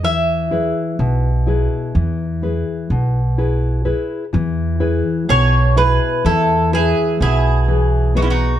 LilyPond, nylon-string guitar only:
\new Staff \with { instrumentName = "Nylon-string guitar" } { \time 9/8 \key e \major \tempo 4. = 42 e8 <e' gis' b'>8 b,8 <e' gis' b'>8 e8 <e' gis' b'>8 b,8 <e' gis' b'>8 <e' gis' b'>8 | e8 <e' gis' b'>8 b,8 <e' b'>8 e8 <e' gis' b'>8 b,8 <e gis' b'>8 <b gis' b'>8 | }